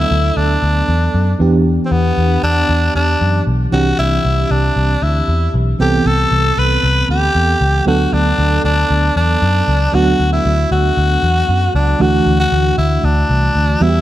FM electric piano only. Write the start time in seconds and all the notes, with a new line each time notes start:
Already playing: F#3 B3 D4 A4
1.39 E3 B3 D4 G4
3.72 E3 C4 D4 G4
5.79 E3 B3 C4 A4
7.86 F#3 B3 D4 A4
9.92 F#3 B3 D4 F#4
11.99 E3 A3 D4 F#4
13.80 E3 G3 B3 F#4
13.89 G4